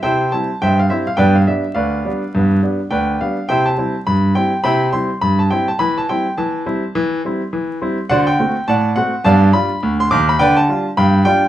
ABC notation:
X:1
M:2/4
L:1/16
Q:"Swing 16ths" 1/4=104
K:C
V:1 name="Grand piano"
[ceg]2 a2 [ceg] f e f | [Bdg] f e2 [Bdf]4- | [Bdf]2 z2 [Bdg]2 f2 | [ceg] a3 b2 g2 |
[egb]2 c'2 b a g a | b a g2 a4- | a2 z6 | [cd^f] g3 [dfa]2 f2 |
[dfa]2 b3 c' d' b | [Bdg] a3 [fgb]2 g2 |]
V:2 name="Grand piano"
[C,E]2 [G,CE]2 G,,2 [G,CE]2 | [G,,B,]2 [G,B,D]2 D,,2 [G,B,D]2 | [G,,B,]2 [G,B,D]2 D,,2 [G,B,D]2 | [C,E]2 [G,CE]2 G,,2 [G,CE]2 |
[C,E]2 [G,CE]2 G,,2 [G,CE]2 | E,2 [G,CE]2 E,2 [G,CE]2 | E,2 [G,CE]2 E,2 [G,CE]2 | [D,^F]2 [A,CF]2 A,,2 [A,CF]2 |
[G,,B,]2 [G,DF]2 D,,2 [_E,,_E,]2 | D,2 [G,DF]2 G,,2 [G,DF]2 |]